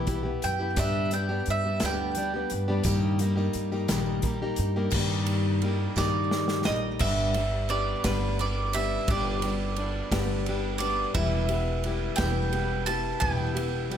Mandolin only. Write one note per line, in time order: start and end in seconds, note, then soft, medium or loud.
0.00 0.40 A5 loud
0.44 0.77 G5 medium
0.79 1.12 E5 loud
1.13 1.46 G5 medium
1.50 1.82 E5 medium
1.85 2.51 G5 loud
5.98 6.65 D5 loud
6.65 6.98 D#5 loud
7.01 7.69 E5 loud
7.70 8.02 D5 medium
8.05 8.40 B4 medium
8.41 8.76 D5 medium
8.74 9.10 E5 medium
9.10 10.44 D5 medium
10.78 11.14 D5 medium
11.15 12.22 E5 loud
12.16 12.86 G5 loud
12.86 13.20 A5 loud
13.20 13.97 G5 loud